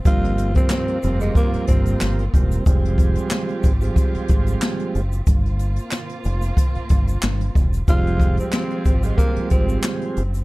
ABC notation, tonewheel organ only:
X:1
M:4/4
L:1/16
Q:"Swing 16ths" 1/4=92
K:Fm
V:1 name="Tonewheel organ" clef=bass
[G,,F,G,B,C]3 [G,,F,G,B,C]3 [G,,F,G,B,C]6- [G,,F,G,B,C] z [G,,F,G,B,C]2 | [F,G,A,C]6 z [F,G,A,C]6- [F,G,A,C] z2 | z16 | [F,G,A,C]6 z [F,G,A,C]6- [F,G,A,C] z2 |]